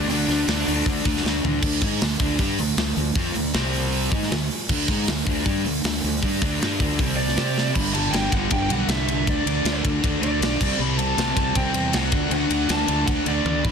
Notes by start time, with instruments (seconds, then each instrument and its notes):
Already playing: distorted electric guitar D4
0.08 fingered electric bass D2, overdriven electric guitar D3 A3 D4, lead electric guitar D4, open hi-hat
0.28 fingered electric bass D2, overdriven electric guitar D3 A3 D4, snare, open hi-hat
0.47 fingered electric bass D2, overdriven electric guitar D3 A3 D4, snare, open hi-hat
0.67 fingered electric bass D2, overdriven electric guitar D3 A3 D4, open hi-hat
0.86 fingered electric bass D2, overdriven electric guitar D3 A3 D4, kick, open hi-hat
1.05 fingered electric bass D2, overdriven electric guitar D3 A3 D4, kick, open hi-hat
1.17 snare
1.23 fingered electric bass D2, overdriven electric guitar D3 A3 D4, snare
1.44 fingered electric bass D2, overdriven electric guitar D3 A3 D4, floor tom
1.62 fingered electric bass D2, overdriven electric guitar D3 A3 D4, kick, crash
1.81 fingered electric bass G#2, overdriven electric guitar G#3 D#4 G#4, kick, open hi-hat
2.01 fingered electric bass D2, overdriven electric guitar D3 A3, snare, open hi-hat
2.20 fingered electric bass D2, overdriven electric guitar D3 A3 D4, kick, open hi-hat
2.39 fingered electric bass G2, overdriven electric guitar G3 D4 G4, kick, open hi-hat
2.58 fingered electric bass D2, overdriven electric guitar D3 A3, open hi-hat
2.77 fingered electric bass D2, overdriven electric guitar D3 A3, snare, open hi-hat
2.96 fingered electric bass D2, overdriven electric guitar D3 A3, open hi-hat
3.15 fingered electric bass F2, overdriven electric guitar F3 C4 F4, kick, open hi-hat
3.35 fingered electric bass D2, overdriven electric guitar D3 A3, open hi-hat
3.54 fingered electric bass C2, overdriven electric guitar C3 G3 C4, snare
3.73 open hi-hat
3.93 open hi-hat
4.11 fingered electric bass G#2, overdriven electric guitar G#3 D#4 G#4, kick
4.23 snare
4.31 fingered electric bass D2, overdriven electric guitar D3 A3, snare, open hi-hat
4.51 open hi-hat
4.69 fingered electric bass D2, overdriven electric guitar D3 A3 D4, kick, crash
4.88 fingered electric bass G#2, overdriven electric guitar G#3 D#4 G#4, kick, snare, open hi-hat
5.07 fingered electric bass D2, overdriven electric guitar D3 A3, snare, open hi-hat
5.26 fingered electric bass D2, overdriven electric guitar D3 A3 D4, kick, open hi-hat
5.45 fingered electric bass G2, overdriven electric guitar G3 D4 G4, kick, open hi-hat
5.64 fingered electric bass D2, overdriven electric guitar D3 A3, open hi-hat
5.84 fingered electric bass D2, overdriven electric guitar D3 A3, snare, open hi-hat
6.04 fingered electric bass D2, overdriven electric guitar D3 A3, open hi-hat
6.22 fingered electric bass G2, overdriven electric guitar G3 D4 G4, kick, open hi-hat
6.42 fingered electric bass D2, overdriven electric guitar D3 A3 D4, kick, open hi-hat
6.60 fingered electric bass G2, overdriven electric guitar G3 D4 G4, snare, open hi-hat
6.80 fingered electric bass D2, overdriven electric guitar D3 A3 D4, kick, open hi-hat
6.99 fingered electric bass C2, overdriven electric guitar C3 G3 C4, kick, open hi-hat
7.16 lead electric guitar D5, open hi-hat
7.28 snare
7.37 fingered electric bass C3, overdriven electric guitar C4 G4 C5, snare, open hi-hat
7.58 snare
7.74 fingered electric bass G1, overdriven electric guitar G2 D3 G3, lead electric guitar B5, kick, crash
7.94 overdriven electric guitar G2 D3 G3, lead electric guitar A5, ride
8.11 fingered electric bass G1, overdriven electric guitar G2 D3 G3, lead electric guitar G5, snare, ride
8.32 fingered electric bass G1, overdriven electric guitar G2 D3 G3, lead electric guitar F#5, kick, ride
8.51 fingered electric bass G1, overdriven electric guitar G2 D3 G3, lead electric guitar G5, kick, ride
8.69 fingered electric bass B1, overdriven electric guitar G2 D3 G3, lead electric guitar F#5, ride
8.88 fingered electric bass C2, overdriven electric guitar G2 D3 G3, lead electric guitar E5, snare, ride
9.08 overdriven electric guitar G2 D3 G3, ride
9.27 fingered electric bass D2, overdriven electric guitar D3 A3 D4, lead electric guitar D5, kick, ride
9.46 fingered electric bass D2, overdriven electric guitar D3 A3 D4, ride
9.65 fingered electric bass D2, overdriven electric guitar D3 A3 D4, snare, ride
9.84 fingered electric bass D2, overdriven electric guitar D3 A3 D4, kick, ride
10.03 fingered electric bass D2, overdriven electric guitar D3 A3 D4, kick, ride
10.21 fingered electric bass D2, overdriven electric guitar D3 A3 D4, lead electric guitar D5, ride
10.41 fingered electric bass B1, overdriven electric guitar D3 A3 D4, snare, ride
10.60 fingered electric bass C2, overdriven electric guitar C3 G3 C4, kick, crash
10.79 fingered electric bass C2, overdriven electric guitar C3 G3 C4, lead electric guitar B5
10.97 overdriven electric guitar C3 G3 C4, lead electric guitar A5, ride
11.18 fingered electric bass C2, overdriven electric guitar C3 G3 C4, snare, ride
11.36 fingered electric bass C2, overdriven electric guitar C3 G3 C4, lead electric guitar A5, kick, ride
11.55 fingered electric bass C2, overdriven electric guitar C3 G3 C4, lead electric guitar G5, kick, ride
11.73 fingered electric bass E2, overdriven electric guitar C3 G3 C4, ride
11.93 fingered electric bass C2, overdriven electric guitar C3 G3 C4, lead electric guitar F#5, snare, ride
12.12 fingered electric bass D2, overdriven electric guitar D3 A3 D4, kick, ride
12.30 fingered electric bass D2, overdriven electric guitar D3 A3 D4, lead electric guitar F#5, ride
12.50 fingered electric bass D2, overdriven electric guitar D3 A3 D4, lead electric guitar F#5, ride
12.69 fingered electric bass D2, overdriven electric guitar D3 A3 D4, lead electric guitar A5, snare, ride
12.88 fingered electric bass D2, overdriven electric guitar D3 A3 D4, ride
13.07 fingered electric bass D2, overdriven electric guitar D3 A3 D4, lead electric guitar F#5, kick, ride
13.25 fingered electric bass D2, overdriven electric guitar D3 A3 D4, lead electric guitar D5, ride
13.45 fingered electric bass D2, overdriven electric guitar D3 A3 D4, high tom
13.64 fingered electric bass A1, overdriven electric guitar D3 A3 D4, lead electric guitar B5, kick